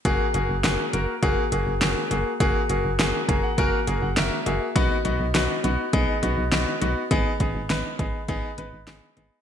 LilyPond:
<<
  \new Staff \with { instrumentName = "Grand piano" } { \time 4/4 \key fis \mixolydian \tempo 4 = 102 << { r1 | r4. ais''16 fis''16 gis''8 ais''16 fis''16 e''8 e''8 | r1 | r1 | } \\ { <ais fis' gis'>8 <ais fis' gis'>8 <ais fis' gis'>8 <ais fis' ais'>8 <ais fis' gis'>8 <ais fis' gis'>8 <ais fis' gis'>8 <ais fis' gis'>8 | <ais fis' gis'>8 <ais fis' gis'>8 <ais fis' gis'>8 <ais fis' gis'>8 <ais fis' ais'>8 <ais fis' gis'>8 <ais fis' ais'>8 <ais fis' gis'>8 | <b dis' fis'>8 <b dis' fis'>8 <b dis' fis'>8 <b dis' fis'>8 <b dis' gis'>8 <b dis' fis'>8 <b dis' fis'>8 <b dis' fis'>8 | <b dis' gis'>8 <b dis' gis'>8 <b dis' b'>8 <b dis' gis'>8 <b dis' gis'>8 <b dis' b'>8 <b dis' gis'>8 <b dis' gis'>8 | } >> }
  \new Staff \with { instrumentName = "FM bass" } { \clef bass \time 4/4 \key fis \mixolydian fis,,16 r16 fis,,16 fis,,16 fis,,16 r16 fis,,16 r16 fis,,16 r16 fis,,16 fis,,16 fis,,16 r16 fis,,16 r16 | fis,,16 r16 fis,,16 fis,,16 fis,,16 r16 fis,,16 r16 fis,,16 r16 fis,,16 fis,,16 fis,,16 r16 fis,,16 r16 | b,,16 r16 b,,16 b,,16 b,,16 r16 b,,16 r16 b,,16 r16 b,,16 b,,16 b,,16 r16 b,,16 r16 | gis,,16 r16 gis,,16 gis,,16 gis,,16 r16 gis,,16 r16 gis,,16 r16 gis,,16 gis,,16 gis,,16 r16 gis,,16 r16 | }
  \new DrumStaff \with { instrumentName = "Drums" } \drummode { \time 4/4 <hh bd>8 hh8 <hh sn>8 hh8 <hh bd>8 hh8 <hh sn>8 hh8 | <hh bd>8 hh8 <hh sn>8 <hh bd>8 <hh bd>8 hh8 <hh sn>8 hh8 | <hh bd>8 hh8 <hh sn>8 hh8 <hh bd>8 hh8 <hh sn>8 hh8 | <hh bd>8 <hh bd>8 <hh sn>8 <hh bd>8 <hh bd>8 hh8 <hh sn>8 hh8 | }
>>